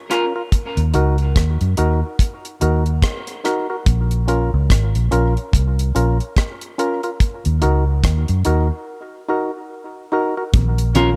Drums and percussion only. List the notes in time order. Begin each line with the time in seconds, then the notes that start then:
0.11 cross-stick, closed hi-hat
0.52 kick, closed hi-hat
0.77 closed hi-hat
0.94 closed hi-hat
1.18 closed hi-hat
1.36 kick, cross-stick, closed hi-hat
1.61 closed hi-hat
1.77 closed hi-hat
2.19 kick, closed hi-hat
2.45 closed hi-hat
2.61 closed hi-hat
2.86 closed hi-hat
3.02 kick, cross-stick, closed hi-hat
3.27 closed hi-hat
3.45 cross-stick, closed hi-hat
3.86 kick, closed hi-hat
4.11 closed hi-hat
4.28 closed hi-hat
4.70 kick, cross-stick, closed hi-hat
4.95 closed hi-hat
5.12 closed hi-hat
5.37 closed hi-hat
5.53 kick, closed hi-hat
5.79 closed hi-hat
5.96 closed hi-hat
6.20 closed hi-hat
6.37 kick, cross-stick, closed hi-hat
6.61 closed hi-hat
6.79 closed hi-hat
7.03 closed hi-hat
7.20 kick, closed hi-hat
7.45 closed hi-hat
7.62 closed hi-hat
8.04 kick, cross-stick, closed hi-hat
8.28 closed hi-hat
8.45 closed hi-hat
10.54 kick, closed hi-hat, low conga
10.78 closed hi-hat
10.95 closed hi-hat, low conga